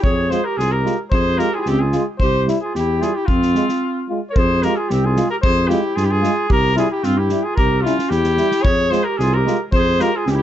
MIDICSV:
0, 0, Header, 1, 7, 480
1, 0, Start_track
1, 0, Key_signature, -4, "minor"
1, 0, Tempo, 538600
1, 29, Time_signature, 2, 2, 24, 8
1, 9288, End_track
2, 0, Start_track
2, 0, Title_t, "Trumpet"
2, 0, Program_c, 0, 56
2, 24, Note_on_c, 0, 73, 84
2, 269, Note_on_c, 0, 72, 76
2, 282, Note_off_c, 0, 73, 0
2, 394, Note_on_c, 0, 70, 72
2, 408, Note_off_c, 0, 72, 0
2, 508, Note_on_c, 0, 68, 89
2, 521, Note_off_c, 0, 70, 0
2, 635, Note_on_c, 0, 70, 73
2, 648, Note_off_c, 0, 68, 0
2, 877, Note_off_c, 0, 70, 0
2, 985, Note_on_c, 0, 72, 90
2, 1229, Note_on_c, 0, 70, 82
2, 1242, Note_off_c, 0, 72, 0
2, 1370, Note_on_c, 0, 68, 69
2, 1384, Note_off_c, 0, 70, 0
2, 1389, Note_on_c, 0, 67, 57
2, 1402, Note_off_c, 0, 68, 0
2, 1425, Note_on_c, 0, 68, 78
2, 1439, Note_off_c, 0, 67, 0
2, 1470, Note_on_c, 0, 67, 90
2, 1483, Note_off_c, 0, 68, 0
2, 1598, Note_on_c, 0, 68, 70
2, 1611, Note_off_c, 0, 67, 0
2, 1840, Note_off_c, 0, 68, 0
2, 1950, Note_on_c, 0, 72, 96
2, 2176, Note_off_c, 0, 72, 0
2, 2328, Note_on_c, 0, 68, 64
2, 2432, Note_off_c, 0, 68, 0
2, 2448, Note_on_c, 0, 67, 81
2, 2697, Note_on_c, 0, 68, 71
2, 2710, Note_off_c, 0, 67, 0
2, 2804, Note_on_c, 0, 67, 73
2, 2818, Note_off_c, 0, 68, 0
2, 2903, Note_on_c, 0, 65, 91
2, 2917, Note_off_c, 0, 67, 0
2, 3630, Note_off_c, 0, 65, 0
2, 3830, Note_on_c, 0, 73, 60
2, 3884, Note_on_c, 0, 72, 96
2, 3897, Note_off_c, 0, 73, 0
2, 4125, Note_on_c, 0, 70, 81
2, 4138, Note_off_c, 0, 72, 0
2, 4244, Note_on_c, 0, 68, 64
2, 4257, Note_off_c, 0, 70, 0
2, 4357, Note_on_c, 0, 67, 73
2, 4370, Note_off_c, 0, 68, 0
2, 4497, Note_on_c, 0, 68, 64
2, 4510, Note_off_c, 0, 67, 0
2, 4718, Note_off_c, 0, 68, 0
2, 4724, Note_on_c, 0, 70, 76
2, 4774, Note_off_c, 0, 70, 0
2, 4830, Note_on_c, 0, 72, 106
2, 5061, Note_on_c, 0, 67, 83
2, 5075, Note_off_c, 0, 72, 0
2, 5309, Note_on_c, 0, 68, 84
2, 5322, Note_off_c, 0, 67, 0
2, 5386, Note_on_c, 0, 67, 71
2, 5399, Note_off_c, 0, 68, 0
2, 5442, Note_on_c, 0, 68, 88
2, 5456, Note_off_c, 0, 67, 0
2, 5791, Note_off_c, 0, 68, 0
2, 5808, Note_on_c, 0, 70, 97
2, 6023, Note_off_c, 0, 70, 0
2, 6045, Note_on_c, 0, 68, 82
2, 6155, Note_off_c, 0, 68, 0
2, 6163, Note_on_c, 0, 67, 69
2, 6276, Note_on_c, 0, 65, 84
2, 6290, Note_off_c, 0, 67, 0
2, 6394, Note_on_c, 0, 67, 64
2, 6407, Note_off_c, 0, 65, 0
2, 6622, Note_on_c, 0, 68, 71
2, 6635, Note_off_c, 0, 67, 0
2, 6728, Note_off_c, 0, 68, 0
2, 6733, Note_on_c, 0, 70, 89
2, 6966, Note_on_c, 0, 65, 83
2, 6979, Note_off_c, 0, 70, 0
2, 7211, Note_on_c, 0, 67, 101
2, 7224, Note_off_c, 0, 65, 0
2, 7685, Note_on_c, 0, 73, 103
2, 7699, Note_off_c, 0, 67, 0
2, 7938, Note_on_c, 0, 72, 91
2, 7951, Note_off_c, 0, 73, 0
2, 8057, Note_on_c, 0, 70, 79
2, 8070, Note_off_c, 0, 72, 0
2, 8180, Note_on_c, 0, 68, 89
2, 8193, Note_off_c, 0, 70, 0
2, 8323, Note_on_c, 0, 70, 83
2, 8336, Note_off_c, 0, 68, 0
2, 8557, Note_off_c, 0, 70, 0
2, 8669, Note_on_c, 0, 72, 99
2, 8920, Note_on_c, 0, 70, 91
2, 8934, Note_off_c, 0, 72, 0
2, 9061, Note_on_c, 0, 68, 78
2, 9074, Note_off_c, 0, 70, 0
2, 9181, Note_on_c, 0, 67, 89
2, 9195, Note_off_c, 0, 68, 0
2, 9199, Note_off_c, 0, 67, 0
2, 9228, Note_on_c, 0, 67, 83
2, 9288, Note_off_c, 0, 67, 0
2, 9288, End_track
3, 0, Start_track
3, 0, Title_t, "Clarinet"
3, 0, Program_c, 1, 71
3, 47, Note_on_c, 1, 68, 73
3, 279, Note_off_c, 1, 68, 0
3, 279, Note_on_c, 1, 68, 62
3, 419, Note_on_c, 1, 67, 68
3, 432, Note_off_c, 1, 68, 0
3, 545, Note_on_c, 1, 65, 74
3, 558, Note_off_c, 1, 67, 0
3, 656, Note_on_c, 1, 67, 60
3, 669, Note_off_c, 1, 65, 0
3, 888, Note_off_c, 1, 67, 0
3, 1012, Note_on_c, 1, 68, 79
3, 1245, Note_on_c, 1, 67, 71
3, 1259, Note_off_c, 1, 68, 0
3, 1384, Note_on_c, 1, 65, 63
3, 1397, Note_off_c, 1, 67, 0
3, 1405, Note_on_c, 1, 64, 50
3, 1419, Note_off_c, 1, 65, 0
3, 1427, Note_on_c, 1, 65, 64
3, 1440, Note_off_c, 1, 64, 0
3, 1502, Note_on_c, 1, 60, 72
3, 1516, Note_off_c, 1, 65, 0
3, 1608, Note_on_c, 1, 65, 60
3, 1621, Note_off_c, 1, 60, 0
3, 1845, Note_off_c, 1, 65, 0
3, 1985, Note_on_c, 1, 67, 77
3, 2195, Note_off_c, 1, 67, 0
3, 2357, Note_on_c, 1, 65, 56
3, 2447, Note_off_c, 1, 65, 0
3, 2480, Note_on_c, 1, 64, 65
3, 2686, Note_on_c, 1, 65, 61
3, 2699, Note_off_c, 1, 64, 0
3, 2827, Note_on_c, 1, 64, 55
3, 2840, Note_off_c, 1, 65, 0
3, 2943, Note_on_c, 1, 60, 63
3, 2956, Note_off_c, 1, 64, 0
3, 3649, Note_off_c, 1, 60, 0
3, 3855, Note_on_c, 1, 70, 58
3, 3911, Note_on_c, 1, 68, 72
3, 3924, Note_off_c, 1, 70, 0
3, 4142, Note_on_c, 1, 67, 62
3, 4156, Note_off_c, 1, 68, 0
3, 4274, Note_on_c, 1, 65, 60
3, 4287, Note_off_c, 1, 67, 0
3, 4382, Note_on_c, 1, 60, 72
3, 4395, Note_off_c, 1, 65, 0
3, 4509, Note_on_c, 1, 65, 60
3, 4522, Note_off_c, 1, 60, 0
3, 4734, Note_off_c, 1, 65, 0
3, 4738, Note_on_c, 1, 67, 60
3, 4785, Note_off_c, 1, 67, 0
3, 4852, Note_on_c, 1, 68, 82
3, 5083, Note_on_c, 1, 64, 67
3, 5097, Note_off_c, 1, 68, 0
3, 5315, Note_on_c, 1, 65, 78
3, 5328, Note_off_c, 1, 64, 0
3, 5398, Note_on_c, 1, 64, 65
3, 5411, Note_off_c, 1, 65, 0
3, 5437, Note_on_c, 1, 65, 70
3, 5450, Note_off_c, 1, 64, 0
3, 5778, Note_off_c, 1, 65, 0
3, 5784, Note_on_c, 1, 67, 82
3, 6010, Note_off_c, 1, 67, 0
3, 6023, Note_on_c, 1, 65, 63
3, 6143, Note_off_c, 1, 65, 0
3, 6153, Note_on_c, 1, 64, 63
3, 6270, Note_on_c, 1, 60, 71
3, 6283, Note_off_c, 1, 64, 0
3, 6399, Note_on_c, 1, 64, 62
3, 6412, Note_off_c, 1, 60, 0
3, 6643, Note_on_c, 1, 65, 59
3, 6657, Note_off_c, 1, 64, 0
3, 6753, Note_off_c, 1, 65, 0
3, 6761, Note_on_c, 1, 67, 83
3, 7003, Note_on_c, 1, 61, 66
3, 7017, Note_off_c, 1, 67, 0
3, 7231, Note_on_c, 1, 64, 82
3, 7244, Note_off_c, 1, 61, 0
3, 7731, Note_on_c, 1, 68, 78
3, 7744, Note_off_c, 1, 64, 0
3, 7981, Note_off_c, 1, 68, 0
3, 7981, Note_on_c, 1, 68, 67
3, 8088, Note_on_c, 1, 67, 71
3, 8101, Note_off_c, 1, 68, 0
3, 8225, Note_on_c, 1, 65, 89
3, 8239, Note_off_c, 1, 67, 0
3, 8354, Note_on_c, 1, 67, 74
3, 8367, Note_off_c, 1, 65, 0
3, 8573, Note_off_c, 1, 67, 0
3, 8696, Note_on_c, 1, 68, 82
3, 8924, Note_on_c, 1, 67, 70
3, 8937, Note_off_c, 1, 68, 0
3, 9047, Note_on_c, 1, 65, 73
3, 9061, Note_off_c, 1, 67, 0
3, 9145, Note_on_c, 1, 60, 80
3, 9158, Note_off_c, 1, 65, 0
3, 9183, Note_on_c, 1, 61, 61
3, 9197, Note_off_c, 1, 60, 0
3, 9220, Note_on_c, 1, 64, 80
3, 9233, Note_off_c, 1, 61, 0
3, 9288, Note_off_c, 1, 64, 0
3, 9288, End_track
4, 0, Start_track
4, 0, Title_t, "Trombone"
4, 0, Program_c, 2, 57
4, 272, Note_on_c, 2, 65, 56
4, 368, Note_off_c, 2, 65, 0
4, 758, Note_on_c, 2, 65, 46
4, 853, Note_off_c, 2, 65, 0
4, 1229, Note_on_c, 2, 65, 63
4, 1326, Note_off_c, 2, 65, 0
4, 1714, Note_on_c, 2, 65, 56
4, 1811, Note_off_c, 2, 65, 0
4, 2208, Note_on_c, 2, 64, 69
4, 2302, Note_off_c, 2, 64, 0
4, 2672, Note_on_c, 2, 64, 49
4, 2769, Note_off_c, 2, 64, 0
4, 3167, Note_on_c, 2, 65, 57
4, 3260, Note_off_c, 2, 65, 0
4, 3650, Note_on_c, 2, 65, 46
4, 3743, Note_off_c, 2, 65, 0
4, 4140, Note_on_c, 2, 65, 53
4, 4231, Note_off_c, 2, 65, 0
4, 4610, Note_on_c, 2, 65, 57
4, 4703, Note_off_c, 2, 65, 0
4, 5068, Note_on_c, 2, 65, 60
4, 5165, Note_off_c, 2, 65, 0
4, 5534, Note_on_c, 2, 65, 60
4, 5633, Note_off_c, 2, 65, 0
4, 6023, Note_on_c, 2, 64, 72
4, 6120, Note_off_c, 2, 64, 0
4, 6516, Note_on_c, 2, 64, 53
4, 6610, Note_off_c, 2, 64, 0
4, 6986, Note_on_c, 2, 64, 63
4, 7082, Note_off_c, 2, 64, 0
4, 7468, Note_on_c, 2, 64, 47
4, 7563, Note_off_c, 2, 64, 0
4, 7940, Note_on_c, 2, 65, 51
4, 8037, Note_off_c, 2, 65, 0
4, 8439, Note_on_c, 2, 65, 51
4, 8532, Note_off_c, 2, 65, 0
4, 8914, Note_on_c, 2, 65, 67
4, 9008, Note_off_c, 2, 65, 0
4, 9288, End_track
5, 0, Start_track
5, 0, Title_t, "Trombone"
5, 0, Program_c, 3, 57
5, 265, Note_on_c, 3, 56, 50
5, 363, Note_off_c, 3, 56, 0
5, 742, Note_on_c, 3, 56, 53
5, 840, Note_off_c, 3, 56, 0
5, 1224, Note_on_c, 3, 56, 60
5, 1323, Note_off_c, 3, 56, 0
5, 1716, Note_on_c, 3, 56, 55
5, 1812, Note_off_c, 3, 56, 0
5, 2190, Note_on_c, 3, 55, 56
5, 2288, Note_off_c, 3, 55, 0
5, 2683, Note_on_c, 3, 55, 56
5, 2778, Note_off_c, 3, 55, 0
5, 3161, Note_on_c, 3, 56, 60
5, 3256, Note_off_c, 3, 56, 0
5, 3642, Note_on_c, 3, 56, 48
5, 3737, Note_off_c, 3, 56, 0
5, 4129, Note_on_c, 3, 56, 58
5, 4222, Note_off_c, 3, 56, 0
5, 4595, Note_on_c, 3, 56, 57
5, 4690, Note_off_c, 3, 56, 0
5, 5078, Note_on_c, 3, 56, 67
5, 5173, Note_off_c, 3, 56, 0
5, 5547, Note_on_c, 3, 56, 62
5, 5643, Note_off_c, 3, 56, 0
5, 6027, Note_on_c, 3, 55, 64
5, 6124, Note_off_c, 3, 55, 0
5, 6507, Note_on_c, 3, 55, 57
5, 6603, Note_off_c, 3, 55, 0
5, 6985, Note_on_c, 3, 55, 53
5, 7081, Note_off_c, 3, 55, 0
5, 7471, Note_on_c, 3, 55, 49
5, 7566, Note_off_c, 3, 55, 0
5, 7942, Note_on_c, 3, 56, 60
5, 8039, Note_off_c, 3, 56, 0
5, 8414, Note_on_c, 3, 56, 64
5, 8513, Note_off_c, 3, 56, 0
5, 8903, Note_on_c, 3, 56, 62
5, 9000, Note_off_c, 3, 56, 0
5, 9288, End_track
6, 0, Start_track
6, 0, Title_t, "Tuba"
6, 0, Program_c, 4, 58
6, 42, Note_on_c, 4, 41, 66
6, 304, Note_off_c, 4, 41, 0
6, 517, Note_on_c, 4, 36, 69
6, 781, Note_off_c, 4, 36, 0
6, 1004, Note_on_c, 4, 41, 74
6, 1266, Note_off_c, 4, 41, 0
6, 1481, Note_on_c, 4, 37, 84
6, 1744, Note_off_c, 4, 37, 0
6, 1957, Note_on_c, 4, 36, 70
6, 2221, Note_off_c, 4, 36, 0
6, 2449, Note_on_c, 4, 40, 75
6, 2709, Note_off_c, 4, 40, 0
6, 2934, Note_on_c, 4, 41, 67
6, 3193, Note_off_c, 4, 41, 0
6, 3895, Note_on_c, 4, 41, 72
6, 4154, Note_off_c, 4, 41, 0
6, 4374, Note_on_c, 4, 36, 84
6, 4632, Note_off_c, 4, 36, 0
6, 4848, Note_on_c, 4, 41, 79
6, 5108, Note_off_c, 4, 41, 0
6, 5322, Note_on_c, 4, 43, 90
6, 5583, Note_off_c, 4, 43, 0
6, 5799, Note_on_c, 4, 36, 79
6, 6060, Note_off_c, 4, 36, 0
6, 6277, Note_on_c, 4, 43, 73
6, 6538, Note_off_c, 4, 43, 0
6, 6755, Note_on_c, 4, 36, 73
6, 7016, Note_off_c, 4, 36, 0
6, 7222, Note_on_c, 4, 40, 81
6, 7487, Note_off_c, 4, 40, 0
6, 7705, Note_on_c, 4, 41, 63
6, 7969, Note_off_c, 4, 41, 0
6, 8190, Note_on_c, 4, 36, 91
6, 8453, Note_off_c, 4, 36, 0
6, 8659, Note_on_c, 4, 41, 71
6, 8925, Note_off_c, 4, 41, 0
6, 9145, Note_on_c, 4, 37, 82
6, 9288, Note_off_c, 4, 37, 0
6, 9288, End_track
7, 0, Start_track
7, 0, Title_t, "Drums"
7, 32, Note_on_c, 9, 36, 88
7, 121, Note_off_c, 9, 36, 0
7, 276, Note_on_c, 9, 38, 23
7, 365, Note_off_c, 9, 38, 0
7, 531, Note_on_c, 9, 38, 24
7, 620, Note_off_c, 9, 38, 0
7, 767, Note_on_c, 9, 38, 23
7, 856, Note_off_c, 9, 38, 0
7, 995, Note_on_c, 9, 36, 81
7, 1084, Note_off_c, 9, 36, 0
7, 1239, Note_on_c, 9, 38, 22
7, 1329, Note_off_c, 9, 38, 0
7, 1477, Note_on_c, 9, 38, 26
7, 1566, Note_off_c, 9, 38, 0
7, 1713, Note_on_c, 9, 38, 21
7, 1802, Note_off_c, 9, 38, 0
7, 1957, Note_on_c, 9, 36, 76
7, 2046, Note_off_c, 9, 36, 0
7, 2209, Note_on_c, 9, 38, 22
7, 2298, Note_off_c, 9, 38, 0
7, 2453, Note_on_c, 9, 38, 26
7, 2542, Note_off_c, 9, 38, 0
7, 2691, Note_on_c, 9, 38, 26
7, 2780, Note_off_c, 9, 38, 0
7, 2924, Note_on_c, 9, 36, 77
7, 3013, Note_off_c, 9, 36, 0
7, 3050, Note_on_c, 9, 38, 21
7, 3140, Note_off_c, 9, 38, 0
7, 3162, Note_on_c, 9, 38, 26
7, 3251, Note_off_c, 9, 38, 0
7, 3287, Note_on_c, 9, 38, 22
7, 3377, Note_off_c, 9, 38, 0
7, 3884, Note_on_c, 9, 36, 88
7, 3973, Note_off_c, 9, 36, 0
7, 4119, Note_on_c, 9, 38, 27
7, 4208, Note_off_c, 9, 38, 0
7, 4368, Note_on_c, 9, 38, 32
7, 4457, Note_off_c, 9, 38, 0
7, 4603, Note_on_c, 9, 38, 27
7, 4692, Note_off_c, 9, 38, 0
7, 4843, Note_on_c, 9, 36, 105
7, 4932, Note_off_c, 9, 36, 0
7, 5079, Note_on_c, 9, 38, 26
7, 5168, Note_off_c, 9, 38, 0
7, 5321, Note_on_c, 9, 38, 34
7, 5410, Note_off_c, 9, 38, 0
7, 5557, Note_on_c, 9, 38, 30
7, 5647, Note_off_c, 9, 38, 0
7, 5793, Note_on_c, 9, 36, 89
7, 5882, Note_off_c, 9, 36, 0
7, 6031, Note_on_c, 9, 38, 24
7, 6120, Note_off_c, 9, 38, 0
7, 6268, Note_on_c, 9, 38, 27
7, 6357, Note_off_c, 9, 38, 0
7, 6500, Note_on_c, 9, 38, 26
7, 6590, Note_off_c, 9, 38, 0
7, 6751, Note_on_c, 9, 36, 76
7, 6840, Note_off_c, 9, 36, 0
7, 7002, Note_on_c, 9, 38, 21
7, 7091, Note_off_c, 9, 38, 0
7, 7119, Note_on_c, 9, 38, 23
7, 7208, Note_off_c, 9, 38, 0
7, 7229, Note_on_c, 9, 38, 23
7, 7318, Note_off_c, 9, 38, 0
7, 7341, Note_on_c, 9, 38, 26
7, 7431, Note_off_c, 9, 38, 0
7, 7462, Note_on_c, 9, 38, 25
7, 7551, Note_off_c, 9, 38, 0
7, 7588, Note_on_c, 9, 38, 26
7, 7677, Note_off_c, 9, 38, 0
7, 7705, Note_on_c, 9, 36, 96
7, 7794, Note_off_c, 9, 36, 0
7, 7954, Note_on_c, 9, 38, 26
7, 8043, Note_off_c, 9, 38, 0
7, 8196, Note_on_c, 9, 38, 26
7, 8285, Note_off_c, 9, 38, 0
7, 8442, Note_on_c, 9, 38, 23
7, 8531, Note_off_c, 9, 38, 0
7, 8666, Note_on_c, 9, 36, 81
7, 8755, Note_off_c, 9, 36, 0
7, 8908, Note_on_c, 9, 38, 25
7, 8997, Note_off_c, 9, 38, 0
7, 9152, Note_on_c, 9, 38, 26
7, 9241, Note_off_c, 9, 38, 0
7, 9288, End_track
0, 0, End_of_file